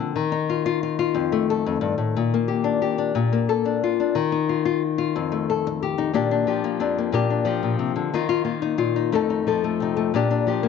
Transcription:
Already playing: nylon-string guitar F3 A#3 D4 A4
0.00 nylon-string guitar D3
0.16 nylon-string guitar D#3
0.32 nylon-string guitar D#4
0.49 nylon-string guitar F4
0.66 nylon-string guitar F4
0.83 nylon-string guitar F4
0.99 nylon-string guitar F4
1.15 nylon-string guitar F2
1.32 nylon-string guitar A3
1.50 nylon-string guitar A4
1.66 nylon-string guitar F2
1.81 nylon-string guitar G2
1.98 nylon-string guitar A2
2.17 nylon-string guitar A#2
2.34 nylon-string guitar A#3
2.48 nylon-string guitar G4
2.64 nylon-string guitar D4
2.82 nylon-string guitar G4
2.98 nylon-string guitar D4
3.15 nylon-string guitar A#2
3.33 nylon-string guitar A#3
3.49 nylon-string guitar A4
3.65 nylon-string guitar D4
3.84 nylon-string guitar F4
4.00 nylon-string guitar D4
4.15 nylon-string guitar D#3
4.32 nylon-string guitar D#4
4.49 nylon-string guitar F4
4.65 nylon-string guitar F4
4.98 nylon-string guitar F4
5.16 nylon-string guitar F2
5.32 nylon-string guitar A3
5.50 nylon-string guitar A4
5.67 muted nylon-string guitar stroke
5.83 nylon-string guitar G4
5.98 nylon-string guitar D#4
6.14 nylon-string guitar A#2 A#3 D4 G4
6.31 nylon-string guitar D4
6.47 nylon-string guitar F3 G4
6.64 nylon-string guitar A#3
6.80 nylon-string guitar F2 D4
6.98 nylon-string guitar A#3
7.12 nylon-string guitar A#2 A#3 D4 G4
7.30 nylon-string guitar D4
7.45 nylon-string guitar F3 G4
7.63 nylon-string guitar A#2
7.79 nylon-string guitar C3
7.96 nylon-string guitar D3
8.14 nylon-string guitar D#3 D#4 F4
8.29 nylon-string guitar F4
8.45 nylon-string guitar A#3 F4
8.62 nylon-string guitar D#4
8.78 nylon-string guitar A#2 F4
8.96 nylon-string guitar D#4
9.12 nylon-string guitar F2 A3 D#4 A4
9.30 nylon-string guitar D#4
9.47 nylon-string guitar F3 A4
9.64 nylon-string guitar A3
9.80 nylon-string guitar C3 D#4
9.97 nylon-string guitar A3
10.14 nylon-string guitar A#2 A#3 D4 G4
10.31 nylon-string guitar D4
10.47 nylon-string guitar F3 G4
10.63 nylon-string guitar A#3

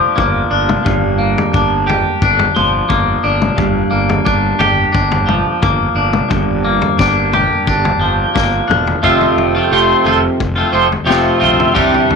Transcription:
Already playing: clean electric guitar F3 A#3 D4 G4
0.16 fingered electric bass G1, clean electric guitar A#3, kick, floor tom
0.51 fingered electric bass G1, clean electric guitar D4
0.69 mid tom
0.84 fingered electric bass G1, clean electric guitar G2, kick, floor tom
1.18 clean electric guitar A#3
1.38 floor tom
1.53 fingered electric bass G1, clean electric guitar D4, kick
1.87 clean electric guitar G4, floor tom
2.22 fingered electric bass G1, clean electric guitar D4, kick
2.39 floor tom
2.56 fingered electric bass G1, clean electric guitar F3, mid tom
2.89 fingered electric bass G1, clean electric guitar A#3, kick, floor tom
3.24 fingered electric bass G1, clean electric guitar D4
3.42 mid tom
3.57 fingered electric bass G1, clean electric guitar G2, kick, floor tom
3.91 fingered electric bass G1, clean electric guitar A#3
4.09 floor tom
4.25 fingered electric bass G1, clean electric guitar D4, kick
4.59 fingered electric bass G1, clean electric guitar G4, floor tom
4.92 fingered electric bass G1, clean electric guitar D4, kick
5.12 floor tom
5.27 clean electric guitar F3, mid tom
5.62 fingered electric bass G1, clean electric guitar A#3, kick, floor tom
5.95 fingered electric bass G1, clean electric guitar D4
6.13 mid tom
6.30 fingered electric bass G1, clean electric guitar G2, kick, floor tom
6.64 clean electric guitar A#3
6.82 floor tom
6.99 fingered electric bass G1, clean electric guitar D4, kick, snare
7.33 clean electric guitar G4, floor tom, mid tom
7.67 fingered electric bass G1, clean electric guitar D4, kick
7.85 floor tom
7.98 fingered electric bass G1, clean electric guitar F3
8.35 fingered electric bass G1, clean electric guitar A#3, kick, snare
8.68 fingered electric bass E1, clean electric guitar D4, mid tom
8.87 floor tom
9.02 fingered electric bass F1, clean electric guitar F2 C3 F3 A3 C4 F4, kick, floor tom
9.21 floor tom
9.37 fingered electric bass F1, floor tom
9.55 clean electric guitar F3 A3 C4 F4
9.71 fingered electric bass F1, clean electric guitar F2 C3 F3 A3 C4 F4
10.04 fingered electric bass F1, clean electric guitar F3 A3 C4 F4, floor tom
10.22 muted clean electric guitar stroke
10.40 fingered electric bass F1, kick, floor tom
10.56 clean electric guitar F3 A3 C4 F4
10.72 fingered electric bass F1, clean electric guitar F3 A3 C4 F4
10.88 muted clean electric guitar stroke, floor tom
11.05 fingered electric bass F1, clean electric guitar F2 C3 F3 A3 C4 F4
11.10 snare
11.40 fingered electric bass A#1, clean electric guitar F3 A3 C4 F4, floor tom
11.60 floor tom, mid tom
11.74 fingered electric bass C2, clean electric guitar C3 E3 G3 D4 G4, kick, floor tom
11.94 floor tom
12.09 fingered electric bass C2, floor tom

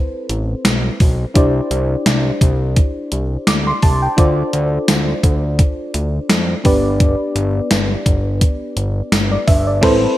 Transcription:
Already playing: fm electric piano C4 E4 A4 B4 C5
0.29 analog synth bass A1, closed hi-hat
0.65 analog synth bass B1, snare, closed hi-hat, tambourine
1.00 analog synth bass B1, kick, open hi-hat
1.34 analog synth bass C2, fm electric piano D4 E4 G4 C5 D5, kick, closed hi-hat
1.71 analog synth bass C2, closed hi-hat
2.06 analog synth bass C2, snare, closed hi-hat, tambourine
2.41 analog synth bass C2, kick, closed hi-hat
2.76 kick, closed hi-hat
3.12 analog synth bass C2, closed hi-hat
3.47 analog synth bass D2, fm electric piano D6, snare, closed hi-hat, tambourine
3.67 fm electric piano C6
3.82 analog synth bass C2, fm electric piano A5, kick, open hi-hat
4.02 fm electric piano G5
4.17 analog synth bass D2, fm electric piano D4 F4 A4 C5 D5, kick, closed hi-hat
4.53 analog synth bass D2, closed hi-hat
4.88 analog synth bass D2, snare, closed hi-hat, tambourine
5.23 analog synth bass D2, kick, closed hi-hat
5.59 kick, closed hi-hat
5.94 analog synth bass D2, closed hi-hat
6.29 analog synth bass F2, snare, closed hi-hat, tambourine
6.64 analog synth bass G1, fm electric piano B3 D4 G4 B4 D5, kick, open hi-hat
7.00 kick, closed hi-hat
7.36 analog synth bass G1, closed hi-hat
7.71 analog synth bass G1, snare, closed hi-hat, tambourine
8.06 analog synth bass G1, kick, closed hi-hat
8.41 kick, closed hi-hat
8.77 analog synth bass G1, closed hi-hat
9.12 analog synth bass G1, snare, closed hi-hat, tambourine
9.32 fm electric piano D5
9.47 analog synth bass G1, fm electric piano E5, kick, open hi-hat
9.67 fm electric piano D5
9.81 analog synth bass A1, fm electric piano C4 E4 A4 B4 C5, kick, snare, crash

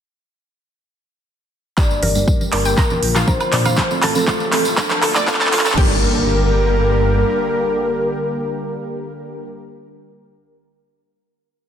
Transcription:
1.78 synth stab G2 A#3 D4 A#4, supersaw synth D3 G3 A#3 G4 A#4, synth pluck G4, soft synth lead D5, kick, clap, tambourine, riser
1.91 synth stab G2 G3 A#3 D4 A#4, tambourine
2.03 detuned saw bass G1, synth pluck A#4, open hi-hat, high conga
2.15 synth stab G2 G3 A#3 D4 A#4, tambourine
2.28 synth stab G2 G3, kick, tambourine
2.41 tambourine, high conga
2.53 detuned saw bass G1, synth stab G3 A#3 D4 A#4, soft synth lead A#4, synth pluck D5, clap, open hi-hat
2.65 synth pluck G5, tambourine
2.78 synth stab A#2 F3 A#3 D4 A#4, supersaw synth F3 F4 A#4, synth pluck A#5, kick, clap, tambourine
2.90 synth stab A#2 F3 A#3 D4 A#4, tambourine, high conga
3.03 detuned saw bass A#1, open hi-hat
3.15 synth stab A#2 F3 A#3 D4 A#4, synth pluck F4, clap, tambourine
3.27 synth stab A#2 F3 A#3 D4 A#4, synth pluck A#4, soft synth lead C5, kick, tambourine, high conga
3.40 tambourine, high woodblock
3.53 synth stab A2 F3 A#3 D4 A#4, detuned saw bass A#2, synth pluck D5, clap, open hi-hat
3.65 synth pluck F5, tambourine, high conga, high woodblock
3.76 synth stab A2 F3 A3 C4 A4, supersaw synth C3 A3 A4, kick, clap, tambourine
3.91 synth stab A2 F3 A3 C4 A4, tambourine
4.02 detuned saw bass A1, soft synth lead A4, synth pluck A5, clap, open hi-hat, high conga, high woodblock
4.15 synth stab A2 F3 A3 C4 A4, tambourine
4.28 synth stab F3, synth pluck F4, kick, clap, tambourine
4.40 tambourine, high conga
4.53 detuned saw bass A1, synth stab F3 A3 C4 A4, clap, open hi-hat
4.65 tambourine
4.77 supersaw synth D3 A4, synth stab F3 A3 D4 A4, kick, clap, tambourine
4.90 synth stab F3 A3 D4 A4, clap, tambourine, high conga
5.03 detuned saw bass D2, synth pluck A4, clap, open hi-hat, high woodblock
5.15 synth stab F3 A3 D4 A4, synth pluck D5, clap, tambourine
5.27 synth stab F3 A3 D4 A4, soft synth lead A4, synth pluck F5, kick, clap, tambourine, high conga
5.34 clap
5.40 synth pluck A5, clap, tambourine
5.46 clap
5.53 detuned saw bass D1, synth stab F3 A3 D4 A4, synth pluck F4, clap, open hi-hat
5.59 clap
5.65 synth pluck A4, clap, tambourine, high conga
5.72 clap
5.77 detuned saw bass G1, supersaw synth D3 G3 A#3 G4 A#4, synth stab G3 A#3 D4 A#4, synth pluck G4, soft synth lead A#4, kick, crash, impact

